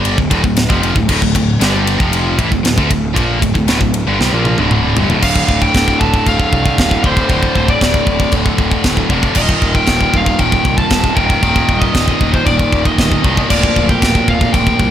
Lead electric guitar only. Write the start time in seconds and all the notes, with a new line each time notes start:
5.23 F5
5.62 G5
6.00 A5
6.27 F5
7.06 C5
7.70 D5
7.82 D5
9.37 D#5
9.76 G5
10.16 F5
10.40 G5
10.78 A5
11.16 G5
11.80 D#5
12.33 C5
12.45 D5
12.86 D#5
13.00 D#5
13.50 D5
13.90 G5
14.28 F5
14.53 G5